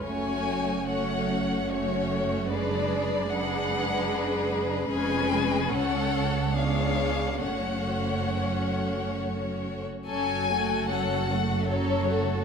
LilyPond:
<<
  \new Staff \with { instrumentName = "Violin section" } { \time 3/4 \key fis \minor \tempo 4 = 73 gis''4 fis''4 cis''4 | d''4 fis''4. r8 | gis''4 fis''4 eis''4 | fis''2 r4 |
gis''4 fis''4 cis''4 | }
  \new Staff \with { instrumentName = "Violin section" } { \time 3/4 \key fis \minor <fis' cis''>4 <fis' cis''>4 <fis' cis''>4 | <gis' b'>4 <gis' b'>2 | <gis' b'>4 <a' cis''>4 <gis' cis''>4 | <fis' cis''>2~ <fis' cis''>8. r16 |
<a' cis''>8 <fis' a'>8 <a' cis''>8 <fis' a'>8 <a' cis''>8 <fis' a'>8 | }
  \new Staff \with { instrumentName = "Viola section" } { \time 3/4 \key fis \minor <a cis'>4 <a cis'>4 <a cis'>4 | <gis d'>4 <gis d'>2 | <gis cis'>4 cis'4 <b d'>4 | <a cis'>2~ <a cis'>8. r16 |
<fis cis'>8 a8 <fis cis'>8 a8 <fis cis'>8 a8 | }
  \new Staff \with { instrumentName = "Cello section" } { \clef bass \time 3/4 \key fis \minor fis,2.~ | fis,2. | eis,4 cis,2 | fis,2~ fis,8. r16 |
fis,2. | }
  \new Staff \with { instrumentName = "Double bass section" } { \clef bass \time 3/4 \key fis \minor fis,,2.~ | fis,,2. | eis,,4 cis,2 | fis,,2~ fis,,8. r16 |
fis,,2. | }
>>